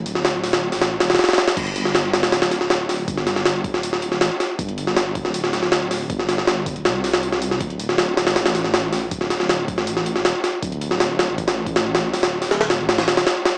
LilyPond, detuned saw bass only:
\new Staff \with { instrumentName = "Detuned saw bass" } { \clef bass \time 4/4 \key d \phrygian \tempo 4 = 159 d,,4.~ d,,16 a,,8. d,,8 r4 | g,,4.~ g,,16 d,,2~ d,,16 | g,,4.~ g,,16 d,,4~ d,,16 a,,16 r8. | g,,4.~ g,,16 d,,2~ d,,16 |
g,,4.~ g,,16 d,,16 c,2 | d,,4.~ d,,16 a,,2~ a,,16 | d,,4.~ d,,16 a,,4~ a,,16 ees,,16 r8. | d,,4.~ d,,16 a,,2~ a,,16 |
d,,4.~ d,,16 a,,8. d,,8 r4 | }